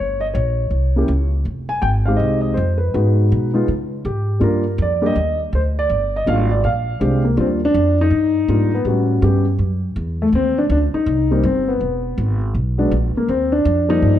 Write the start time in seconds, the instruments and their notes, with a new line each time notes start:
Already playing: upright bass G1, grand piano C#5
0.21 grand piano D#5
0.34 upright bass A#1, grand piano C#5
0.70 upright bass C2
0.96 grand piano A#3 C#4 E4 G4
1.08 upright bass C#2
1.45 upright bass F1
1.69 grand piano G#5
1.82 upright bass G#1, grand piano G5
2.06 grand piano G#3 C4 D#4 G4 F5
2.16 upright bass C2, grand piano D#5
2.41 grand piano D#5
2.54 upright bass F2, grand piano C5
2.78 grand piano B4
2.94 upright bass G#2, grand piano G#3 B3 D#4 F#4
3.32 upright bass B2
3.54 grand piano G#3 B3 D#4 F4
3.68 upright bass C#3
4.05 upright bass G#2, grand piano G4
4.40 upright bass G2, grand piano G3 A#3 D4 F4 A#4
4.78 upright bass F2, grand piano D5
5.02 grand piano G3 A#3 D4 G4
5.06 grand piano D#5
5.16 upright bass D#2
5.53 upright bass D2, grand piano C5
5.79 grand piano D5
5.90 upright bass G1
6.16 grand piano D#5
6.26 upright bass G#1, grand piano G3 A#3 D4 F4 F5
6.51 grand piano D5
6.64 upright bass A#1, grand piano F5
7.00 upright bass C2, grand piano G#3 C4 D4 G4
7.24 grand piano A#3
7.37 upright bass D#2, grand piano G3 A#3 C4 D4 F4
7.65 grand piano D4
7.74 upright bass F2
8.01 grand piano D#4
8.10 upright bass G2
8.48 upright bass G#2, grand piano G3 A#3 D4 F4
8.74 grand piano B3
8.85 upright bass A2, grand piano G3 B3 C#4 F#4
9.22 upright bass G2, grand piano G3 B3 C#4 G4
9.59 upright bass F#2
9.96 upright bass E2
10.22 grand piano A3
10.32 upright bass D#2, grand piano C4
10.58 grand piano D4
10.70 upright bass D2, grand piano D4
10.94 grand piano D#4, muted upright bass stroke
11.06 upright bass C2
11.31 grand piano G3 A#3 C4 D#4
11.43 upright bass G1, grand piano C4
11.68 grand piano B3
11.80 upright bass E1
12.18 upright bass G#1
12.55 upright bass B1
12.78 grand piano F#3 G#3 B3 D4
12.91 upright bass A#1
13.16 grand piano A#3, muted upright bass stroke
13.28 upright bass D#2, grand piano C4
13.52 grand piano D4
13.65 upright bass F2
13.88 grand piano F3 G3 A#3 D#4 D5
14.02 upright bass G2